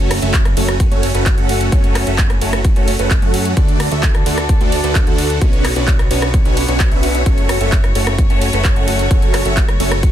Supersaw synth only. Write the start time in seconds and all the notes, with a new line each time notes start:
Already playing: A3 C#4 F#4 A4 C#5
0.22 A3 C#4 F#4 A4 E5
0.57 A3 C#4 F#4 A4 C#5
0.92 A3 C#4 F#4 A4 C#5
1.15 A3 C#4 F#4 A4 B4
1.38 A3 C#4 F#4 A4 F#5
1.72 A3 C#4 A4 C#5
2.07 A3 C#4 F#4 A4 E5
2.42 A3 C#4 F#4 A4 C#5
2.76 A3 C#4 F#4 A4 C#5
2.99 A3 C#4 F#4 A4 B4
3.22 A3 C#4 F#4 A4 F#5
3.57 A3 D4 F#4 D5
3.92 A3 D4 F#4 A4 E5
4.26 A3 D4 F#4 A4 D5
4.61 A3 D4 F#4 A4 D5
4.84 A3 D4 F#4 A4 B4
5.07 A3 D4 F#4 A4 F#5
5.42 C#4 D4 F#4
5.76 C#4 D4 F#4 B4 D5
6.11 C#4 D4 F#4 B4 C#5
6.45 C#4 D4 F#4 B4 C#5
6.69 C#4 D4 F#4 B4 C#5
6.92 C#4 D4 F#4 B4 E5
7.26 A3 C#4 A4 C#5
7.61 A3 C#4 F#4 A4 E5
7.95 A3 C#4 F#4 A4 C#5
8.30 A3 C#4 F#4 A4 C#5
8.53 A3 C#4 F#4 A4 B4
8.76 A3 C#4 F#4 A4 F#5
9.11 A3 C#4 F#4 A4 C#5
9.45 A3 C#4 F#4 A4 E5
9.80 A3 C#4 F#4 A4 C#5